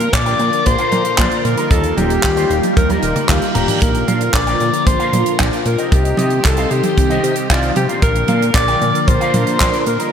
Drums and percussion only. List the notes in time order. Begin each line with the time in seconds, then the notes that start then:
0.00 closed hi-hat
0.13 kick, clap, closed hi-hat
0.26 closed hi-hat
0.39 closed hi-hat
0.53 closed hi-hat
0.66 kick, closed hi-hat
0.78 closed hi-hat
0.92 closed hi-hat, high tom
1.05 closed hi-hat
1.18 kick, clap, closed hi-hat, high tom
1.32 closed hi-hat
1.45 closed hi-hat
1.57 closed hi-hat
1.71 kick, closed hi-hat
1.84 closed hi-hat
1.98 closed hi-hat, high tom
2.10 closed hi-hat
2.23 kick, clap, closed hi-hat
2.37 closed hi-hat
2.51 closed hi-hat
2.63 closed hi-hat, high tom
2.77 kick, closed hi-hat, high tom
2.90 closed hi-hat, high tom
3.03 closed hi-hat
3.16 closed hi-hat, mid tom
3.29 kick, clap, closed hi-hat, mid tom
3.42 closed hi-hat
3.55 closed hi-hat, mid tom
3.68 closed hi-hat, mid tom
3.82 kick, closed hi-hat
3.95 closed hi-hat
4.08 closed hi-hat, high tom
4.21 closed hi-hat
4.34 kick, clap, closed hi-hat
4.47 closed hi-hat
4.60 closed hi-hat
4.74 closed hi-hat
4.87 kick, closed hi-hat
5.00 closed hi-hat
5.13 closed hi-hat, high tom
5.26 closed hi-hat
5.39 kick, clap, closed hi-hat, high tom
5.53 closed hi-hat
5.66 closed hi-hat
5.78 closed hi-hat
5.92 kick, closed hi-hat
6.05 closed hi-hat
6.17 closed hi-hat, high tom
6.30 closed hi-hat
6.45 kick, clap, closed hi-hat
6.57 closed hi-hat
6.71 closed hi-hat
6.83 closed hi-hat, high tom
6.98 kick, closed hi-hat
7.10 closed hi-hat
7.24 closed hi-hat
7.36 closed hi-hat
7.50 kick, clap, closed hi-hat
7.63 closed hi-hat
7.76 closed hi-hat, high tom
7.89 closed hi-hat
8.02 kick, closed hi-hat
8.16 closed hi-hat
8.28 closed hi-hat, high tom
8.42 closed hi-hat
8.54 kick, clap, closed hi-hat
8.68 closed hi-hat
8.82 closed hi-hat
8.95 closed hi-hat
9.08 kick, closed hi-hat
9.21 closed hi-hat
9.34 closed hi-hat, high tom
9.47 closed hi-hat
9.60 kick, clap, closed hi-hat, high tom
9.73 closed hi-hat
9.86 closed hi-hat
10.00 closed hi-hat